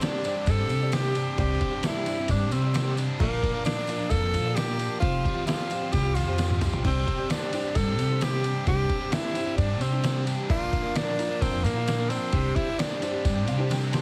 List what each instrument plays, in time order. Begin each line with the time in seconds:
Already playing: overdriven electric guitar C3 C4
0.00 twelve-string acoustic guitar C3 G3 C4 D4 G4, tenor saxophone D4, snare, ride, tambourine
0.23 twelve-string acoustic guitar G3 C4 D4 G4, upright piano G4 C5 D5, ride, tambourine
0.35 twelve-string acoustic guitar C4 D4 G4
0.46 upright bass G2, overdriven electric guitar C4, kick, ride, tambourine
0.50 tenor saxophone A4
0.58 twelve-string acoustic guitar C4 D4 G4
0.69 upright bass C3, twelve-string acoustic guitar G3 C4 D4 G4, ride, tambourine
0.80 twelve-string acoustic guitar C4 D4 G4, upright piano G4 C5 D5
0.92 twelve-string acoustic guitar C3 G3 C4 D4 G4, tenor saxophone G4, snare, ride, tambourine
1.15 twelve-string acoustic guitar G3 C4 D4 G4, ride, tambourine
1.36 upright bass C2, twelve-string acoustic guitar C3 G3 C4 D4 G4, upright piano G4 C5 D5, tenor saxophone G4, kick, ride, tambourine
1.61 overdriven electric guitar C4, kick, ride
1.72 twelve-string acoustic guitar C4 D4 G4
1.83 twelve-string acoustic guitar C3 G3 C4 D4 G4, tenor saxophone E4, snare, ride, tambourine
2.05 twelve-string acoustic guitar G3 C4 D4 G4, upright piano G4 C5 D5, ride, tambourine
2.17 twelve-string acoustic guitar C4 D4 G4
2.28 upright bass G2, overdriven electric guitar C4, tenor saxophone D4, kick, ride, tambourine
2.39 twelve-string acoustic guitar C4 D4 G4
2.51 upright bass C3, twelve-string acoustic guitar G3 C4 D4 G4, tenor saxophone C4, ride, tambourine
2.62 twelve-string acoustic guitar C4 D4 G4, upright piano G4 C5 D5
2.73 twelve-string acoustic guitar C3 G3 C4 D4 G4, snare, ride, tambourine
2.96 twelve-string acoustic guitar G3 C4 D4 G4, ride, tambourine
3.19 upright bass A#1, twelve-string acoustic guitar A#2 D3 F3 A#3 D4 A#4, tenor saxophone A#3, upright piano F4 A#4 D5, kick, tambourine, crash
3.43 overdriven electric guitar A#3, kick, ride
3.53 twelve-string acoustic guitar F3 A#3 D4 A#4
3.64 twelve-string acoustic guitar A#2 D3 F3 A#3 D4 A#4, tenor saxophone D4, snare, ride, tambourine
3.77 twelve-string acoustic guitar F3 A#3 D4 A#4
3.87 twelve-string acoustic guitar F3 A#3 D4 A#4, upright piano F4 A#4 D5, ride, tambourine
3.98 twelve-string acoustic guitar F3 A#3 D4 A#4
4.10 upright bass F2, overdriven electric guitar A#3, tenor saxophone A4, kick, ride, tambourine
4.21 twelve-string acoustic guitar F3 A#3 D4 A#4
4.31 upright bass A#2, twelve-string acoustic guitar F3 A#3 D4 A#4, ride, tambourine
4.43 twelve-string acoustic guitar F3 A#3 D4 A#4, upright piano F4 A#4 D5
4.54 twelve-string acoustic guitar A#2 D3 F3 A#3 D4 A#4, tenor saxophone G4, snare, ride, tambourine
4.77 twelve-string acoustic guitar F3 A#3 D4 A#4, ride, tambourine
5.00 upright bass F1, twelve-string acoustic guitar F3 C4 F4 G4, tenor saxophone F4, upright piano F4 G4 C5, kick, ride
5.25 overdriven electric guitar G3, kick, ride
5.34 twelve-string acoustic guitar C4 F4 G4
5.46 twelve-string acoustic guitar F3 C4 F4 G4, tenor saxophone F4, snare, ride, tambourine
5.70 twelve-string acoustic guitar F3 C4 F4 G4, upright piano F4 G4 C5, ride, tambourine
5.80 twelve-string acoustic guitar C4 F4 G4
5.92 upright bass C2, overdriven electric guitar G3, tenor saxophone G4, kick, ride, tambourine
6.03 twelve-string acoustic guitar C4 F4 G4
6.15 upright bass F2, twelve-string acoustic guitar F3 C4 F4 G4, tenor saxophone F4, ride, tambourine
6.27 twelve-string acoustic guitar C4 F4 G4, upright piano F4 G4 C5
6.38 twelve-string acoustic guitar F3 C4 F4 G4, overdriven electric guitar G3, snare, ride, tambourine
6.50 high tom
6.61 twelve-string acoustic guitar F3 C4 F4 G4, mid tom, ride, tambourine
6.73 floor tom
6.84 upright bass C2, twelve-string acoustic guitar C3 G3 C4 D4 G4, tenor saxophone C4, upright piano D4 G4 C5, kick, tambourine, crash
7.08 overdriven electric guitar C4, kick, ride
7.18 twelve-string acoustic guitar C4 D4 G4
7.29 twelve-string acoustic guitar C3 G3 C4 D4 G4, tenor saxophone D4, snare, ride, tambourine
7.53 twelve-string acoustic guitar G3 C4 D4 G4, upright piano D4 G4 C5, ride, tambourine
7.64 twelve-string acoustic guitar C4 D4 G4
7.75 upright bass G2, overdriven electric guitar C4, tenor saxophone A4, kick, ride, tambourine
7.86 twelve-string acoustic guitar C4 D4 G4
7.97 upright bass C3, twelve-string acoustic guitar G3 C4 D4 G4, ride, tambourine
8.08 twelve-string acoustic guitar C4 D4 G4, upright piano D4 G4 C5
8.19 twelve-string acoustic guitar C3 G3 C4 D4 G4, tenor saxophone G4, snare, ride, tambourine
8.43 twelve-string acoustic guitar G3 C4 D4 G4, ride, tambourine
8.66 upright bass C2, twelve-string acoustic guitar C3 G3 C4 D4 G4, upright piano D4 G4 C5, tenor saxophone G4, kick, ride, tambourine
8.90 overdriven electric guitar C4, kick, ride
9.00 twelve-string acoustic guitar C4 D4 G4
9.11 twelve-string acoustic guitar C3 G3 C4 D4 G4, tenor saxophone E4, snare, ride, tambourine
9.22 twelve-string acoustic guitar C4 D4 G4
9.33 twelve-string acoustic guitar G3 C4 D4 G4, upright piano D4 G4 C5, ride, tambourine
9.44 twelve-string acoustic guitar C4 D4 G4
9.58 upright bass G2, overdriven electric guitar C4, tenor saxophone D4, kick, ride, tambourine
9.69 twelve-string acoustic guitar C4 D4 G4
9.79 upright bass C3, twelve-string acoustic guitar G3 C4 D4 G4, tenor saxophone C4, ride, tambourine
9.91 twelve-string acoustic guitar C4 D4 G4, upright piano D4 G4 C5
10.02 twelve-string acoustic guitar C3 G3 C4 D4 G4, snare, ride, tambourine
10.26 twelve-string acoustic guitar G3 C4 D4 G4, ride, tambourine
10.48 upright bass A#1, twelve-string acoustic guitar A#2 D3 F3 A#3 D4 A#4, upright piano D4 F4 A#4, tenor saxophone F4, kick, crash, tambourine
10.73 overdriven electric guitar A#3, kick, ride
10.83 twelve-string acoustic guitar F3 A#3 D4 A#4
10.94 twelve-string acoustic guitar A#2 D3 F3 A#3 D4 A#4, tenor saxophone D4, snare, ride, tambourine
11.17 twelve-string acoustic guitar F3 A#3 D4 A#4, upright piano D4 F4 A#4, ride, tambourine
11.28 twelve-string acoustic guitar F3 A#3 D4 A#4
11.42 upright bass F2, overdriven electric guitar A#3, tenor saxophone C4, kick, ride, tambourine
11.51 twelve-string acoustic guitar F3 A#3 D4 A#4
11.63 upright bass A#2, twelve-string acoustic guitar F3 A#3 D4 A#4, tenor saxophone A#3, ride, tambourine
11.74 twelve-string acoustic guitar F3 A#3 D4 A#4, upright piano D4 F4 A#4
11.87 twelve-string acoustic guitar A#2 D3 F3 A#3 D4 A#4, snare, ride, tambourine
12.09 twelve-string acoustic guitar F3 A#3 D4 A#4, tenor saxophone C4, ride, tambourine
12.33 upright bass C2, twelve-string acoustic guitar C3 G3 C4 D4 G4, upright piano D4 G4 C5, kick, ride, tambourine
12.56 overdriven electric guitar C4, tenor saxophone E4, kick, ride
12.67 twelve-string acoustic guitar C4 D4 G4
12.78 twelve-string acoustic guitar C3 G3 C4 D4 G4, tenor saxophone D4, snare, ride, tambourine
13.01 twelve-string acoustic guitar G3 C4 D4 G4, upright piano D4 G4 C5, ride, tambourine
13.13 twelve-string acoustic guitar C4 D4 G4
13.25 upright bass G2, overdriven electric guitar C4, kick, ride, tambourine
13.35 twelve-string acoustic guitar C4 D4 G4
13.46 upright bass C3, twelve-string acoustic guitar G3 C4 D4 G4, upright piano F5, ride, tambourine
13.58 twelve-string acoustic guitar C4 D4 G4, upright piano D4 G4 C5
13.69 twelve-string acoustic guitar C3 G3 C4 D4 G4, upright piano G5, snare, ride, tambourine
13.92 twelve-string acoustic guitar G3 C4 D4 G4, upright piano C6, snare, ride, tambourine